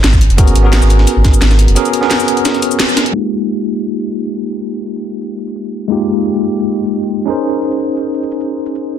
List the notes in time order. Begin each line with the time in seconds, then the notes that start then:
0.04 G#1, snare, closed hi-hat, cabasa
0.13 kick, cabasa
0.21 closed hi-hat
0.30 F#1, closed hi-hat
0.37 B3 C#4 F#4 G#4 A#4, kick, closed hi-hat, cabasa
0.48 closed hi-hat, cabasa
0.55 G#1, closed hi-hat
0.62 B3 C#4 F#4 G#4
0.67 A#4
0.73 snare, closed hi-hat, cabasa
0.82 G#1, closed hi-hat, cabasa
0.90 closed hi-hat, cabasa
0.99 snare
1.07 closed hi-hat, cabasa
1.16 G#1
1.24 kick, snare, closed hi-hat, cabasa
1.34 cabasa
1.42 G#1, snare, closed hi-hat, cabasa
1.51 snare, cabasa
1.59 closed hi-hat
1.68 F#1, closed hi-hat
1.75 B3 C#4 F#4 G#4 A#4, closed hi-hat, cabasa
1.85 closed hi-hat, cabasa
1.93 closed hi-hat
2.01 B3 C#4 F#4 G#4, snare
2.05 A#4
2.11 snare, closed hi-hat, cabasa
2.20 cabasa
2.28 closed hi-hat, cabasa
2.37 closed hi-hat
2.45 snare, closed hi-hat, cabasa
2.54 closed hi-hat
2.62 closed hi-hat, cabasa
2.71 cabasa
2.80 snare, closed hi-hat, cabasa
2.89 cabasa
2.97 snare, closed hi-hat
3.06 closed hi-hat
3.12 G#3 A#3 D#4 F4, cabasa
3.16 G4
3.58 cabasa
3.66 cabasa
3.83 cabasa
4.01 cabasa
4.10 cabasa
4.18 cabasa
4.27 cabasa
4.52 cabasa
4.61 cabasa
4.87 cabasa
4.96 cabasa
5.04 cabasa
5.21 cabasa
5.38 cabasa
5.47 cabasa
5.56 cabasa
5.65 cabasa
5.88 G#3 A#3 D#4 F4, cabasa
5.92 G4
5.99 cabasa
6.25 cabasa
6.34 cabasa
6.42 cabasa
6.59 cabasa
6.76 cabasa
6.85 cabasa
6.93 cabasa
7.03 cabasa
7.26 C#4 D#4 G#4 A#4, cabasa
7.30 C5
7.37 cabasa
7.62 cabasa
7.71 cabasa
7.80 cabasa
7.97 cabasa
8.14 cabasa
8.23 cabasa
8.31 cabasa
8.40 cabasa
8.66 cabasa
8.75 cabasa